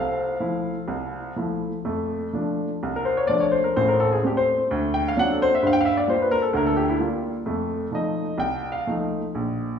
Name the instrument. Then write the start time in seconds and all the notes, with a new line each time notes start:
upright piano
Already playing: C2 A4 C5 E5 F5
0.40 F3 A3 E4
0.88 C2
1.36 F3 A3 E4
1.85 F2 A3
2.33 F3 A3 D4
2.83 C2
2.96 A#4
3.05 C5
3.17 C#5
3.27 F3 A3 D4 D5
3.40 C#5
3.52 C5
3.64 A#4
3.76 A1 A2 C5
3.88 A#4
4.00 A4
4.12 G#4
4.23 G3 A3 C4 G4
4.37 C5
4.71 D2
4.94 G5
5.08 F5
5.17 F#3 C4 D4 F#5
5.32 A4
5.42 C5
5.55 E5
5.63 G2
5.67 F5
5.73 G5
5.81 F5
5.85 E5
5.97 D5
6.08 G3 A#3 F4 C5
6.22 B4
6.31 A#4
6.42 A4
6.53 D2 D3 A#4
6.67 A4
6.76 G4
6.90 E4
7.00 G3 A#3 F4
7.46 F2 A3
7.91 F3 A3 D#4 D#5
8.38 C2 G5
8.72 F5
8.87 F3 A3 D#4
9.35 A#1